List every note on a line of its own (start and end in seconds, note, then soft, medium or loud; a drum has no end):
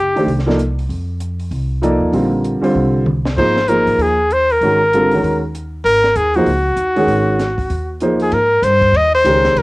0.00 0.25 F#1 medium
0.00 0.43 G4 medium
0.15 0.26 D#3 medium
0.15 0.27 A3 medium
0.15 0.27 D4 soft
0.15 0.27 G4 soft
0.15 0.27 C5 medium
0.15 open hi-hat soft
0.26 0.86 C2 medium
0.26 open hi-hat soft
0.39 snare soft
0.46 0.57 F3 medium
0.46 0.57 A#3 medium
0.46 0.57 D#4 medium
0.46 0.58 A4 medium
0.46 0.58 D5 medium
0.46 snare soft
0.59 closed hi-hat soft
0.79 open hi-hat soft
0.89 1.48 F2 medium
0.89 open hi-hat soft
1.20 closed hi-hat soft
1.39 open hi-hat soft
1.51 1.98 C2 medium
1.51 open hi-hat soft
1.82 2.28 F3 medium
1.82 2.28 A#3 medium
1.82 2.29 D#4 medium
1.82 2.29 A4 medium
1.82 2.29 D5 medium
1.82 closed hi-hat soft
2.00 2.12 D#2 medium
2.12 2.59 A#1 medium
2.12 2.59 D3 medium
2.12 2.59 G3 soft
2.12 2.60 C4 soft
2.12 2.60 F4 soft
2.12 2.60 A#4 medium
2.12 open hi-hat soft
2.44 closed hi-hat soft
2.62 3.03 D3 medium
2.62 3.03 G3 medium
2.62 3.04 C4 medium
2.62 3.04 F4 medium
2.62 3.04 C5 medium
2.62 muted upright bass stroke soft
2.62 open hi-hat soft
2.75 3.34 C2 medium
2.75 mid tom soft
3.06 mid tom medium
3.25 snare medium
3.37 3.84 G#1 medium
3.37 3.54 F3 soft
3.37 3.55 A#3 soft
3.37 3.55 D#4 soft
3.37 3.55 G#4 soft
3.37 3.70 C5 medium
3.37 3.55 C5 medium
3.37 kick medium
3.37 crash medium
3.56 snare soft
3.68 4.14 F3 soft
3.68 4.14 A#3 soft
3.68 4.14 D#4 soft
3.68 4.15 G#4 soft
3.68 4.04 A#4 medium
3.68 4.15 C5 medium
3.68 closed hi-hat soft
3.87 3.97 A1 medium
3.87 open hi-hat soft
3.98 4.57 D#2 medium
3.98 open hi-hat soft
4.02 4.34 G#4 medium
4.31 4.53 C5 medium
4.31 closed hi-hat soft
4.50 5.43 A#4 medium
4.50 open hi-hat soft
4.61 5.20 G#1 medium
4.61 4.79 D#3 medium
4.61 4.79 G#3 soft
4.61 4.79 C#4 soft
4.61 4.80 F#4 soft
4.61 4.80 A#4 medium
4.61 open hi-hat soft
4.93 5.10 D3 soft
4.93 5.10 G3 soft
4.93 5.10 C4 soft
4.93 5.10 F4 soft
4.93 5.11 A4 medium
4.93 closed hi-hat soft
5.11 5.39 D#3 soft
5.11 5.39 G#3 soft
5.11 5.40 C#4 soft
5.11 5.40 F#4 soft
5.11 5.40 A#4 medium
5.11 open hi-hat soft
5.23 5.82 D#2 medium
5.23 open hi-hat soft
5.55 closed hi-hat soft
5.84 6.13 G#1 medium
5.84 6.18 A#4 medium
5.84 open hi-hat soft
6.04 snare soft
6.16 6.44 D#2 medium
6.16 6.37 G#4 medium
6.16 closed hi-hat soft
6.34 6.46 F3 medium
6.34 6.46 A#3 medium
6.34 6.47 D#4 medium
6.34 8.02 F#4 medium
6.34 6.47 G#4 medium
6.34 6.47 C5 medium
6.34 open hi-hat soft
6.45 6.75 C#2 medium
6.45 open hi-hat soft
6.76 7.06 D#2 medium
6.76 closed hi-hat soft
6.96 7.37 D#3 medium
6.96 7.37 G#3 medium
6.96 7.37 C#4 medium
6.96 7.37 F#4 medium
6.96 7.38 G#4 medium
6.96 open hi-hat soft
7.07 7.67 G#1 medium
7.07 open hi-hat soft
7.39 snare soft
7.39 closed hi-hat soft
7.58 kick soft
7.58 open hi-hat soft
7.70 8.29 D#2 medium
7.70 open hi-hat soft
8.00 8.32 F3 medium
8.00 8.33 A#3 soft
8.00 8.33 D#4 medium
8.00 8.33 G#4 soft
8.00 8.33 C5 medium
8.00 closed hi-hat soft
8.20 8.35 G#4 medium
8.20 open hi-hat soft
8.32 8.62 G#2 medium
8.32 8.65 A#4 medium
8.32 ride medium
8.62 8.92 G2 medium
8.62 8.98 C5 medium
8.62 hi-hat pedal medium
8.62 ride medium
8.81 kick medium
8.81 ride soft
8.92 9.23 D#2 medium
8.92 ride medium
8.97 9.14 D#5 loud
9.15 9.60 C5 medium
9.24 9.54 C#2 medium
9.24 9.62 D#3 medium
9.24 9.62 G#3 soft
9.24 9.62 C#4 soft
9.24 9.62 G4 medium
9.24 9.62 A#4 medium
9.24 hi-hat pedal soft
9.24 ride medium
9.45 snare soft
9.45 ride soft
9.55 9.62 C2 medium
9.55 9.62 A#4 medium
9.55 ride medium